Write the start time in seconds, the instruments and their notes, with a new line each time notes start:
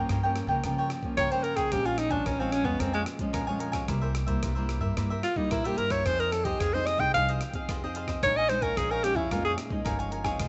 Already playing: nylon-string guitar F3 A#3 C#4
0.09 upright bass G2, nylon-string guitar G2, cavaquinho F4 A#4 C#5 G5, kick, cross-stick, closed hi-hat
0.23 nylon-string guitar F3 A#3 C#4, cavaquinho A#4 C#5 G5
0.36 cross-stick, closed hi-hat
0.47 upright bass C#3, nylon-string guitar F3 A#3 C#4, cavaquinho A#4 C#5 G5, kick
0.64 nylon-string guitar G2 F3 A#3 C#4, upright bass C#3, cavaquinho F4 A#4 C#5 G5, kick, cross-stick, closed hi-hat
0.78 cavaquinho A#4 C#5 G5
0.90 muted cavaquinho stroke, cross-stick, closed hi-hat
1.03 nylon-string guitar F3 A#3 C#4, kick
1.17 nylon-string guitar G2, upright bass C#3, cavaquinho F4 A#4 C#5 G5, alto saxophone C#5, kick, cross-stick, closed hi-hat
1.31 nylon-string guitar F3 A#3 C#4, cavaquinho A#4 C#5 G5, alto saxophone C5, closed hi-hat
1.43 cavaquinho F4 A#4 C#5 G5, alto saxophone A#4, closed hi-hat
1.56 alto saxophone G#4, cavaquinho A#4 C#5 G5, kick, cross-stick, closed hi-hat
1.71 upright bass A#1, nylon-string guitar A#2 F3 G#3 C#4, alto saxophone G4, cavaquinho A#4 C#5 F5 G#5, kick, cross-stick, closed hi-hat
1.85 alto saxophone F4, cavaquinho C#5 F5 G#5, closed hi-hat
1.98 alto saxophone D#4, muted cavaquinho stroke, cross-stick, closed hi-hat
2.10 nylon-string guitar F3 G#3 C#4, alto saxophone D4, cavaquinho C#5 F5 G#5, kick, closed hi-hat
2.25 upright bass A#1, nylon-string guitar F2, alto saxophone C#4, cavaquinho A#4 C#5 F5 G#5, kick, cross-stick, closed hi-hat
2.40 nylon-string guitar F3 G#3 C#4, alto saxophone C4, cavaquinho C#5 F5 G#5
2.52 alto saxophone C#4, cross-stick, closed hi-hat
2.64 upright bass F2, nylon-string guitar F3 G#3 C#4, alto saxophone B3, cavaquinho C#5 F5 G#5, kick
2.79 upright bass F2, nylon-string guitar A#2 F3 G#3 C#4, alto saxophone C4, cavaquinho A#4 C#5 F5 G#5, kick, cross-stick, closed hi-hat
2.93 alto saxophone G#3, cavaquinho C#5 F5 G#5, closed hi-hat
3.06 muted cavaquinho stroke, cross-stick, closed hi-hat
3.19 nylon-string guitar F3 G#3 C#4, kick, closed hi-hat
3.33 upright bass A#1, nylon-string guitar F2, cavaquinho A#4 C#5 F5 G#5, kick, cross-stick, closed hi-hat
3.47 nylon-string guitar F3 G#3 C#4, cavaquinho C#5 F5 G#5
3.59 cavaquinho A#4 C#5 F5 G#5, closed hi-hat
3.72 cavaquinho C#5 F5 G#5, kick, cross-stick, closed hi-hat
3.88 upright bass C2, nylon-string guitar C3 G3 A#3 E4, cavaquinho E4 A#4 C5 E5, kick, cross-stick, closed hi-hat
4.01 cavaquinho A#4 C5 E5
4.14 muted cavaquinho stroke, cross-stick, closed hi-hat
4.26 nylon-string guitar G3 A#3 E4, cavaquinho A#4 C5 E5, kick, closed hi-hat
4.42 upright bass C2, nylon-string guitar G2, cavaquinho E4 A#4 C5 E5, kick, cross-stick, closed hi-hat
4.55 nylon-string guitar G3 A#3 E4, cavaquinho A#4 C5 E5
4.69 cross-stick, closed hi-hat
4.80 upright bass G2, cavaquinho A#4 C5 E5, kick
4.97 upright bass G2, nylon-string guitar C3 G3 A#3 E4, cavaquinho E4 A#4 C5 E5, kick, cross-stick, closed hi-hat
5.10 cavaquinho A#4 C5 E5
5.23 alto saxophone F4, muted cavaquinho stroke, cross-stick, closed hi-hat
5.36 nylon-string guitar G3 A#3 E4, alto saxophone D#4, kick
5.50 nylon-string guitar G2, upright bass A#2, cavaquinho E4 A#4 C5 E5, alto saxophone E4, kick, cross-stick, closed hi-hat
5.64 nylon-string guitar G3 A#3 E4, alto saxophone G4, cavaquinho A#4 C5 E5, closed hi-hat
5.77 upright bass G2, cavaquinho E4 A#4 C5 E5, alto saxophone A#4, closed hi-hat
5.90 cavaquinho A#4 C5 E5, alto saxophone C#5, kick, cross-stick, closed hi-hat
6.05 upright bass F2, nylon-string guitar F3 C4 D#4 G#4, cavaquinho F4 G#4 C5 D#5, alto saxophone C5, kick, cross-stick, closed hi-hat
6.19 cavaquinho G#4 C5 D#5, alto saxophone A#4, closed hi-hat
6.32 alto saxophone A4, muted cavaquinho stroke, cross-stick, closed hi-hat
6.45 nylon-string guitar C4 D#4 G#4, alto saxophone G4, cavaquinho G#4 C5 D#5, kick, closed hi-hat
6.60 upright bass F2, nylon-string guitar C3, cavaquinho F4 G#4 C5 D#5, alto saxophone G#4, kick, cross-stick, closed hi-hat
6.74 nylon-string guitar C4 D#4 G#4, cavaquinho G#4 C5 D#5, alto saxophone C5
6.86 alto saxophone D#5, cross-stick, closed hi-hat
6.98 upright bass C2, nylon-string guitar C4 D#4 G#4, cavaquinho G#4 C5 D#5, alto saxophone G5, kick
7.14 upright bass C2, nylon-string guitar F3 C4 D#4 G#4, cavaquinho F4 G#4 C5 D#5, alto saxophone F5, kick, cross-stick, closed hi-hat
7.29 cavaquinho G#4 C5 D#5, closed hi-hat
7.41 muted cavaquinho stroke, cross-stick, closed hi-hat
7.54 nylon-string guitar C4 D#4 G#4, kick, closed hi-hat
7.69 upright bass F2, nylon-string guitar C3, cavaquinho F4 G#4 C5 D#5, kick, cross-stick, closed hi-hat
7.84 nylon-string guitar C4 D#4 G#4, cavaquinho G#4 C5 D#5
7.95 cavaquinho F4 G#4 C5 D#5, closed hi-hat
8.08 cavaquinho G#4 C5 D#5, kick, cross-stick, closed hi-hat
8.23 upright bass A#1, nylon-string guitar A#2 G#3 C#4 D#4, cavaquinho A#4 F5 G#5, alto saxophone C#5, kick, cross-stick, closed hi-hat
8.37 cavaquinho C#5 F5 G#5, alto saxophone D#5
8.49 nylon-string guitar G#3 C#4 D#4, alto saxophone C5, muted cavaquinho stroke, cross-stick, closed hi-hat
8.62 alto saxophone A#4, cavaquinho C#5 F5 G#5, kick, closed hi-hat
8.77 upright bass A#1, nylon-string guitar F3, alto saxophone G#4, cavaquinho A#4 C#5 F5 G#5, kick, cross-stick, closed hi-hat
8.91 alto saxophone A#4, cavaquinho C#5 F5 G#5
9.04 nylon-string guitar G#3 C#4 D#4, alto saxophone G4, cross-stick, closed hi-hat
9.15 upright bass F2, alto saxophone E4, cavaquinho C#5 F5 G#5, kick
9.31 upright bass F2, nylon-string guitar A#2 G#3 C#4 D#4, alto saxophone F4, cavaquinho A#4 C#5 F5 G#5, kick, cross-stick, closed hi-hat
9.45 alto saxophone G#4, cavaquinho C#5 F5 G#5
9.58 muted cavaquinho stroke, cross-stick, closed hi-hat
9.70 nylon-string guitar G#3 C#4 D#4, kick
9.85 upright bass G1, nylon-string guitar F3, cavaquinho A#4 C#5 F5 G#5, kick, cross-stick, closed hi-hat
9.99 cavaquinho C#5 F5 G#5, closed hi-hat
10.11 cavaquinho A#4 C#5 F5 G#5, closed hi-hat
10.24 nylon-string guitar C4 D#4 G#4, cavaquinho C#5 F5 G#5, kick, cross-stick, closed hi-hat
10.39 upright bass F1, nylon-string guitar F3, cavaquinho F4 G#4 C5 D#5, kick, cross-stick, closed hi-hat